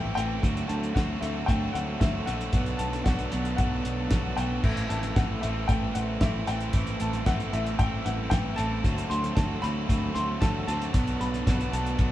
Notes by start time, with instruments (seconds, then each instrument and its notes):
Already playing: fingered electric bass A1, overdriven electric guitar A2 E3 A3 C4 E4, transistor combo organ E3 A3 C4 E4 A4, upright piano G5
0.15 fingered electric bass A1, overdriven electric guitar A2 E3 A3 C4 E4, upright piano G5, closed hi-hat
0.41 fingered electric bass D2, overdriven electric guitar D3 F#3 A3 C4 F#4, transistor combo organ D4, kick, closed hi-hat
0.57 closed hi-hat
0.68 fingered electric bass D2, upright piano A5, closed hi-hat
0.84 closed hi-hat
0.95 fingered electric bass D2, overdriven electric guitar D3 F#3 A3 C4 F#4, upright piano F#5, kick, snare, closed hi-hat
1.21 fingered electric bass D2, overdriven electric guitar D3 F#3 A3 C4 F#4, upright piano E5, closed hi-hat
1.46 fingered electric bass D2, overdriven electric guitar D3 F#3 A3 C4 F#4, upright piano G5, kick, closed hi-hat
1.73 fingered electric bass D2, upright piano F#5, snare, closed hi-hat
2.00 fingered electric bass D2, overdriven electric guitar D3 F#3 A3 C4 F#4, upright piano E5, kick, snare, closed hi-hat
2.26 fingered electric bass A#1, overdriven electric guitar D3 F#3 A3 C4 F#4, upright piano F#5, closed hi-hat
2.41 closed hi-hat
2.53 fingered electric bass B1, overdriven electric guitar B2 F#3 B3 D4 F#4, transistor combo organ F#3 A3 B3 D4 A4, kick, closed hi-hat
2.66 closed hi-hat
2.78 fingered electric bass B1, upright piano A5, closed hi-hat
2.93 snare, closed hi-hat
3.04 fingered electric bass B1, overdriven electric guitar B2 F#3 B3 D4 F#4, upright piano F#5, kick, snare, closed hi-hat
3.19 closed hi-hat
3.32 fingered electric bass B1, overdriven electric guitar B2 F#3 B3 D4 F#4, closed hi-hat
3.45 closed hi-hat
3.57 fingered electric bass B1, overdriven electric guitar B2 F#3 B3 D4 F#4, upright piano F#5, kick, closed hi-hat
3.85 fingered electric bass B1, closed hi-hat
4.10 fingered electric bass B1, overdriven electric guitar B2 F#3 B3 D4 F#4, kick, snare, closed hi-hat
4.37 fingered electric bass B1, overdriven electric guitar B2 F#3 B3 D4 F#4, upright piano G5, closed hi-hat
4.64 fingered electric bass A1, overdriven electric guitar A2 E3 A3 C4 E4, transistor combo organ E3 A3 C4 E4, kick, crash
4.77 closed hi-hat
4.89 fingered electric bass A1, upright piano A5, closed hi-hat
5.03 snare, closed hi-hat
5.16 fingered electric bass A1, overdriven electric guitar A2 E3 A3 C4 E4, upright piano F#5, kick, snare, closed hi-hat
5.41 fingered electric bass A1, overdriven electric guitar A2 E3 A3 C4 E4, upright piano E5, closed hi-hat
5.68 fingered electric bass A1, overdriven electric guitar A2 E3 A3 C4 E4, upright piano G5, kick, closed hi-hat
5.94 fingered electric bass A1, upright piano F#5, closed hi-hat
6.21 fingered electric bass A1, overdriven electric guitar A2 E3 A3 C4 E4, upright piano E5, kick, snare, closed hi-hat
6.47 fingered electric bass A1, overdriven electric guitar A2 E3 A3 C4 E4, upright piano G5, closed hi-hat
6.60 closed hi-hat
6.73 fingered electric bass A1, overdriven electric guitar A2 E3 A3 C4 E4, transistor combo organ B4, kick, closed hi-hat
6.87 closed hi-hat
7.00 fingered electric bass A1, upright piano A5, closed hi-hat
7.13 snare, closed hi-hat
7.26 fingered electric bass A1, overdriven electric guitar A2 E3 A3 C4 E4, upright piano F#5, kick, snare, closed hi-hat
7.40 closed hi-hat
7.53 fingered electric bass A1, overdriven electric guitar A2 E3 A3 C4 E4, upright piano E5, closed hi-hat
7.66 closed hi-hat
7.79 fingered electric bass A1, overdriven electric guitar A2 E3 A3 C4 E4, upright piano G5, kick, closed hi-hat
8.05 fingered electric bass A1, upright piano F#5, snare, closed hi-hat
8.30 fingered electric bass A1, overdriven electric guitar A2 E3 A3 C4 E4, upright piano G5, kick, snare, closed hi-hat
8.56 fingered electric bass A1, overdriven electric guitar A2 E3 A3 C4 E4, upright piano A5, closed hi-hat
8.83 fingered electric bass D2, overdriven electric guitar D3 F#3 A3 C4 F#4, transistor combo organ A3 D4 A4, kick, closed hi-hat
8.98 closed hi-hat
9.10 fingered electric bass D2, upright piano C6, closed hi-hat
9.24 snare, closed hi-hat
9.35 fingered electric bass D2, overdriven electric guitar D3 F#3 A3 C4 F#4, upright piano A5, kick, snare, closed hi-hat
9.62 fingered electric bass D2, overdriven electric guitar D3 F#3 A3 C4 F#4, upright piano B5, closed hi-hat
9.88 fingered electric bass D2, overdriven electric guitar D3 F#3 A3 C4 F#4, kick, closed hi-hat
10.15 fingered electric bass D2, upright piano C6, snare, closed hi-hat
10.41 fingered electric bass D2, overdriven electric guitar D3 F#3 A3 C4 F#4, upright piano A5, kick, snare, closed hi-hat
10.67 fingered electric bass D2, overdriven electric guitar D3 F#3 A3 C4 F#4, upright piano A5, closed hi-hat
10.82 closed hi-hat
10.94 fingered electric bass B1, overdriven electric guitar B2 F#3 B3 D4 F#4, transistor combo organ F#3 B3, kick, closed hi-hat
11.07 closed hi-hat
11.21 fingered electric bass B1, upright piano B5, closed hi-hat
11.34 snare, closed hi-hat
11.47 fingered electric bass B1, overdriven electric guitar B2 F#3 B3 D4 F#4, kick, snare, closed hi-hat
11.61 closed hi-hat
11.73 fingered electric bass B1, overdriven electric guitar B2 F#3 B3 D4 F#4, upright piano A5, closed hi-hat
11.86 closed hi-hat
11.99 fingered electric bass B1, overdriven electric guitar B2 F#3 B3 D4 F#4, kick, closed hi-hat